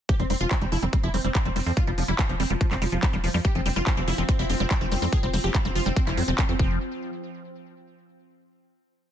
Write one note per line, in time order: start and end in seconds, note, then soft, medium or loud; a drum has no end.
0.09 0.15 F3 medium
0.09 0.15 G4 medium
0.09 kick loud
0.09 closed hi-hat medium
0.19 0.25 F1 medium
0.19 0.23 G3 loud
0.19 0.26 C4 medium
0.19 closed hi-hat soft
0.30 0.36 F1 loud
0.30 0.33 G3 loud
0.30 0.36 C4 medium
0.30 open hi-hat loud
0.40 0.46 F1 medium
0.40 0.46 F3 medium
0.40 0.46 F4 medium
0.40 closed hi-hat soft
0.51 0.54 G3 loud
0.51 0.57 C4 medium
0.51 kick loud
0.51 clap loud
0.51 closed hi-hat medium
0.61 0.67 F1 medium
0.61 0.65 G3 loud
0.61 0.67 C4 medium
0.61 closed hi-hat soft
0.72 0.78 F1 medium
0.72 0.78 F3 medium
0.72 0.78 E4 medium
0.72 open hi-hat medium
0.82 0.88 F1 medium
0.82 0.86 G3 loud
0.82 0.88 C4 medium
0.82 closed hi-hat soft
0.93 0.96 G3 loud
0.93 0.99 C4 medium
0.93 kick loud
0.93 closed hi-hat medium
1.03 1.09 F1 medium
1.03 1.09 F3 medium
1.03 1.09 E4 medium
1.03 closed hi-hat soft
1.14 1.20 F1 medium
1.14 1.17 G3 loud
1.14 1.20 C4 medium
1.14 open hi-hat loud
1.24 1.30 F1 medium
1.24 1.28 G3 loud
1.24 1.30 C4 medium
1.24 closed hi-hat soft
1.35 1.41 F3 medium
1.35 1.41 C4 medium
1.35 kick loud
1.35 clap loud
1.35 closed hi-hat medium
1.45 1.51 F1 medium
1.45 1.49 G3 loud
1.45 1.51 C4 medium
1.45 closed hi-hat soft
1.56 1.62 F1 loud
1.56 1.59 G3 loud
1.56 1.62 C4 medium
1.56 open hi-hat medium
1.66 1.72 F2 medium
1.66 1.72 F3 medium
1.66 1.72 C4 medium
1.77 1.80 G3 loud
1.77 1.83 F4 loud
1.77 kick loud
1.77 closed hi-hat medium
1.87 1.93 F1 medium
1.87 1.93 F3 medium
1.87 1.91 G3 loud
1.87 closed hi-hat soft
1.98 2.04 F1 loud
1.98 2.04 F3 medium
1.98 open hi-hat loud
2.08 2.14 F1 medium
2.08 2.12 G3 loud
2.08 2.14 E4 medium
2.08 closed hi-hat soft
2.19 2.25 F3 medium
2.19 2.22 G3 loud
2.19 kick loud
2.19 clap loud
2.19 closed hi-hat medium
2.29 2.35 F1 medium
2.29 2.35 F3 medium
2.29 closed hi-hat soft
2.40 2.46 F1 loud
2.40 2.43 G3 loud
2.40 2.46 C4 medium
2.40 open hi-hat medium
2.50 2.56 F1 medium
2.50 2.56 F3 medium
2.50 2.54 G3 loud
2.50 closed hi-hat soft
2.61 2.67 F3 medium
2.61 kick loud
2.61 closed hi-hat medium
2.71 2.77 F1 medium
2.71 2.75 G3 loud
2.71 2.77 C4 loud
2.71 clap soft
2.71 closed hi-hat soft
2.82 2.88 F1 loud
2.82 2.88 F3 medium
2.82 2.85 G3 loud
2.82 open hi-hat loud
2.92 2.98 F1 medium
2.92 2.98 F3 medium
2.92 closed hi-hat soft
3.03 3.06 G3 loud
3.03 3.09 C4 loud
3.03 kick loud
3.03 clap loud
3.03 closed hi-hat loud
3.13 3.19 F1 medium
3.13 3.19 F3 medium
3.13 3.17 G3 loud
3.13 closed hi-hat soft
3.24 3.30 F1 loud
3.24 3.30 F3 medium
3.24 3.29 F3 medium
3.24 open hi-hat medium
3.34 3.40 F2 medium
3.34 3.40 F3 medium
3.34 3.38 G3 loud
3.45 6.59 F3 medium
3.45 3.48 G3 loud
3.45 6.59 C4 medium
3.45 3.51 G4 loud
3.45 kick loud
3.45 closed hi-hat medium
3.55 3.61 F1 medium
3.55 3.61 F3 medium
3.55 3.61 C4 medium
3.55 closed hi-hat soft
3.66 3.72 F1 loud
3.66 3.69 G3 loud
3.66 3.72 C4 medium
3.66 open hi-hat loud
3.76 3.82 F1 medium
3.76 3.80 G3 loud
3.76 3.82 F4 medium
3.76 closed hi-hat soft
3.87 3.92 F3 medium
3.87 3.93 C4 medium
3.87 kick loud
3.87 clap loud
3.87 closed hi-hat medium
3.97 4.03 F1 medium
3.97 4.01 G3 loud
3.97 4.03 C4 medium
3.97 closed hi-hat soft
4.08 4.14 F1 loud
4.08 4.11 G3 loud
4.08 4.14 E4 medium
4.08 open hi-hat medium
4.18 4.24 F1 medium
4.18 4.24 F3 medium
4.18 4.24 C4 medium
4.18 closed hi-hat soft
4.29 4.32 G3 loud
4.29 4.35 C4 medium
4.29 kick loud
4.29 closed hi-hat medium
4.39 4.45 F1 medium
4.39 4.43 G3 loud
4.39 4.45 E4 loud
4.39 closed hi-hat soft
4.50 4.56 F1 loud
4.50 4.55 F3 medium
4.50 4.56 C4 medium
4.50 open hi-hat loud
4.60 4.66 F1 medium
4.60 4.64 G3 loud
4.60 4.66 C4 medium
4.60 closed hi-hat soft
4.71 4.74 G3 loud
4.71 4.77 C4 medium
4.71 kick loud
4.71 clap loud
4.71 closed hi-hat medium
4.81 4.87 F1 medium
4.81 4.87 F3 medium
4.81 4.87 C4 medium
4.81 closed hi-hat soft
4.92 4.98 F1 loud
4.92 4.95 G3 loud
4.92 4.98 C4 medium
4.92 open hi-hat loud
5.02 5.08 F2 medium
5.02 5.06 G3 loud
5.02 5.08 C4 medium
5.13 5.18 F3 medium
5.13 5.19 G#4 loud
5.13 kick loud
5.13 closed hi-hat medium
5.23 5.29 F1 medium
5.23 5.26 G3 loud
5.23 5.29 C4 medium
5.23 closed hi-hat soft
5.34 5.39 F1 loud
5.34 5.37 G3 loud
5.34 5.40 C4 medium
5.34 open hi-hat loud
5.44 5.50 F1 medium
5.44 5.50 F3 medium
5.44 5.50 G4 medium
5.44 closed hi-hat soft
5.54 5.58 G3 loud
5.54 5.61 C4 medium
5.54 kick loud
5.54 clap loud
5.54 closed hi-hat medium
5.65 5.71 F1 medium
5.65 5.68 G3 loud
5.65 5.71 C4 medium
5.65 closed hi-hat soft
5.75 5.81 F1 loud
5.75 5.81 F3 medium
5.75 5.81 F4 loud
5.75 open hi-hat loud
5.86 5.92 F1 medium
5.86 5.89 G3 loud
5.86 5.92 C4 medium
5.86 closed hi-hat soft
5.96 6.00 G3 loud
5.96 6.02 C4 medium
5.96 kick loud
5.96 closed hi-hat medium
6.07 6.13 F1 medium
6.07 6.19 F3 medium
6.07 6.13 E4 loud
6.07 clap soft
6.07 closed hi-hat soft
6.17 6.23 F2 medium
6.17 6.23 G3 medium
6.17 6.23 C4 medium
6.17 open hi-hat loud
6.28 6.34 F1 medium
6.28 6.31 F3 loud
6.28 6.34 C4 medium
6.28 closed hi-hat soft
6.38 6.44 G3 loud
6.38 6.44 C4 loud
6.38 kick loud
6.38 clap loud
6.38 closed hi-hat medium
6.49 6.55 F2 medium
6.49 6.52 E3 medium
6.49 6.55 C4 medium
6.49 closed hi-hat soft
6.59 6.79 F1 loud
6.59 6.79 F3 medium
6.59 6.75 C4 loud
6.59 kick loud